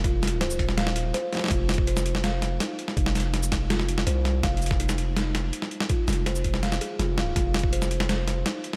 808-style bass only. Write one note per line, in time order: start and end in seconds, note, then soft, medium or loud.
0.00 0.58 F1 medium
0.59 1.13 D#1 medium
1.51 2.59 F1 loud
2.97 4.05 F1 loud
4.07 4.42 C2 medium
4.43 5.52 F1 loud
6.08 6.80 F1 loud
6.99 7.35 F1 medium
7.36 8.44 F1 medium